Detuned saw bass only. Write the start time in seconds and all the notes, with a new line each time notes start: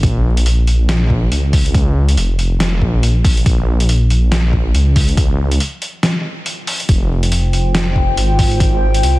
0.03 A#1
1.32 C#2
2.17 F1
2.82 A#1
3.46 A#1
4.75 C#2
6.89 F1
8.17 G#1
9.03 C2